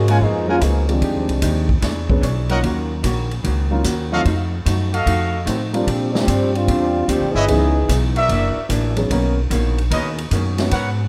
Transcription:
Already playing: G#2 F4 G#4
0.08 G#3 A#3 C#4 F4 A#4 F5 F#5 G#5, ride
0.21 F2 F3 F#3 G#3 A#3 B3 D#4 F4 G#4, kick
0.48 F#3 G#3 A#3 C#4 F4 A#4 F5 F#5 G#5
0.61 C#2 F3 F#3 G#3 A#3 B3 D#4 F4 G#4, kick, hi-hat pedal, ride
0.88 D#3 F3 G3 G#3 C4 D4 G4, ride
1.01 F2 F3 G#3 D#4 G4, kick, ride
1.16 D#2
1.29 C2, ride
1.42 D#2 F3 G#3 D#4 G4, kick, hi-hat pedal, ride
1.69 kick
1.81 E2 E3 D4 G#4 C#5, kick, snare, ride
2.10 F#3 B3 C#4 D4 G#4, kick
2.21 B1 E3 D4 G#4 C#5, kick, hi-hat pedal, ride
2.49 F#3 A#3 C#4 D#4 F4 A#4 C#5 D#5 F#5, ride
2.63 D#2 D#3 A#3 C#4 F#4, kick, ride
3.03 A#1 D#3 A#3 C#4 F#4, kick, hi-hat pedal, ride
3.31 ride
3.43 C#2 D#3 A#3 C#4 F#4, kick, ride
3.71 F#3 A#3 C#4 D#4 F4
3.84 D#2 D#3 A#3 C#4 F#4, kick, hi-hat pedal, ride
4.12 F#3 A3 C4 D#4 F4 F#4 A4 D#5 F5
4.25 F2 F3 A3 D#4 F#4, kick, ride
4.65 F#2 F3 A3 D#4 F#4, kick, hi-hat pedal, ride
4.92 F#4 A4 D#5 F5, ride
5.05 F2 F3 A3 D#4 F#4, kick, ride
5.45 A2 D#3 F3 F#3 A3 C4 D#4 F#4, kick, hi-hat pedal, ride
5.73 F3 G3 A#3 C4 D4 F4, ride
5.86 A#2 G3 C4 D4, kick, ride
6.12 F3 C4 D4 G4, snare
6.25 G2 A#2 G3 C4 D4, kick, hi-hat pedal, ride
6.54 G3 C4 D4 F4, ride
6.66 E2 A#2 G3 C4 D4, kick, ride
7.07 D2 A#2 F3 G3 C4 D4 G4, kick, hi-hat pedal, ride
7.21 A#1
7.31 G1 E3 B3 D#4 G#4
7.36 E4 B4 C#5 D#5
7.48 C#2 C#3 E3 B3 C#4 D#4 G#4, kick, ride
7.89 B1 C#3 E3 B3 D#4, kick, hi-hat pedal, ride
8.15 F#4 A#4 D5 E5, ride
8.29 F#1 F#2 E3 A#3 D4, kick, ride
8.56 muted upright bass stroke
8.69 A1 F#2 E3 A#3 D4, kick, hi-hat pedal, ride
8.96 F#3 B3 C#4 D#4 G#4, ride
9.10 B1 B2 D#3 F#3 A#3 B3 C#4 D#4 A#4, kick, ride
9.50 A#1 B2 D#3 A#3 C#4, kick, hi-hat pedal, ride
9.78 ride
9.91 D#2 B2 D#3 A#3 C#4 A#4 B4 C#5 D#5, kick, ride
10.18 ride
10.31 F#2 B2 D#3 A#3 C#4, kick, hi-hat pedal, ride
10.58 F#3 B3 C#4 D#4 F#4, snare, ride
10.71 G#2 F#3 B3 C#4 A#4 B4 C#5 F#5, kick, ride

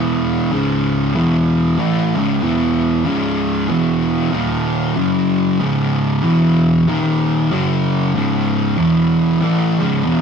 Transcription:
Already playing: E2 B2 E3
0.52 C#2 G#2 C#3
1.15 E2 B2 E3
1.79 A2 E3 A3
2.16 C#2 G#2 C#3
2.42 E2 B2 E3
3.05 C#2 G#2 C#3
3.68 E2 B2 E3
4.32 D#2 A#2 D#3
4.95 F#2 C#3 F#3
5.59 C#2 G#2 C#3
6.23 E2 B2 E3
6.87 D#2 A#2 D#3
7.50 F#2 C#3 F#3
8.14 C#2 G#2 C#3
8.77 E2 B2 E3
9.41 A2 E3 A3
9.79 C#2 G#2 C#3
10.04 E2 B2 E3

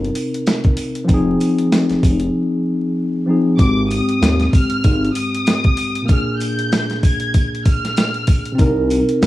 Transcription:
Already playing: G1 C3 C4 D#4 A#4
0.05 closed hi-hat
0.15 closed hi-hat, sleigh bells
0.34 closed hi-hat
0.46 snare, closed hi-hat, sleigh bells
0.64 kick, closed hi-hat
0.77 closed hi-hat, sleigh bells
0.95 closed hi-hat
1.05 F3 C4, sleigh bells
1.09 F1 D#4, kick, closed hi-hat
1.14 G#4
1.40 closed hi-hat, sleigh bells
1.58 closed hi-hat
1.72 snare, closed hi-hat, sleigh bells
1.90 F1, snare, closed hi-hat
2.03 F1, kick, closed hi-hat, sleigh bells
2.20 closed hi-hat
3.26 F3 C4 D#4
3.31 G#4
3.56 G#1 G#2 G#3 D6, kick, closed hi-hat, sleigh bells
3.62 C4 G4
3.90 D#6, closed hi-hat, sleigh bells
4.09 closed hi-hat
4.22 D#2, snare, closed hi-hat, sleigh bells
4.40 snare, closed hi-hat
4.53 F6, kick, closed hi-hat, sleigh bells
4.70 closed hi-hat
4.84 G#1, kick, closed hi-hat, sleigh bells
5.05 closed hi-hat
5.14 D#6, closed hi-hat, sleigh bells
5.35 closed hi-hat
5.46 snare, closed hi-hat, sleigh bells
5.64 kick, closed hi-hat
5.77 closed hi-hat, sleigh bells
5.95 closed hi-hat
6.02 A#2 A#3
6.08 D4 G#4 F6, kick, closed hi-hat, sleigh bells
6.39 G6, closed hi-hat, sleigh bells
6.59 closed hi-hat
6.72 snare, closed hi-hat, sleigh bells
6.90 snare, closed hi-hat
7.03 G#6, kick, closed hi-hat, sleigh bells
7.20 closed hi-hat
7.34 kick, closed hi-hat, sleigh bells
7.55 closed hi-hat
7.65 F6, kick, closed hi-hat, sleigh bells
7.85 snare, closed hi-hat
7.96 snare, closed hi-hat, sleigh bells
8.14 closed hi-hat
8.27 kick, closed hi-hat, sleigh bells
8.45 closed hi-hat
8.52 C3 C4
8.58 C2 D#4 A#4, kick, closed hi-hat, sleigh bells
8.90 closed hi-hat, sleigh bells
9.09 closed hi-hat
9.22 G1, snare, sleigh bells

